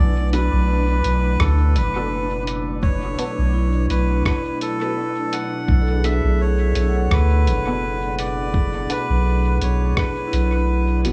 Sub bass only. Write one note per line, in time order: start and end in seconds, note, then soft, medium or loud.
0.00 0.49 B1 loud
0.53 1.01 B1 loud
1.05 1.37 B1 medium
1.40 1.77 D2 loud
1.76 3.16 F#1 loud
3.38 3.87 B1 loud
3.90 4.22 B1 medium
5.68 6.20 B1 loud
6.24 6.73 B1 loud
6.76 7.08 B1 medium
7.11 7.48 D2 loud
7.47 8.87 F#1 loud
9.10 9.58 B1 loud
9.62 9.94 B1 medium
10.33 11.06 B1 medium
11.05 11.13 F#1 medium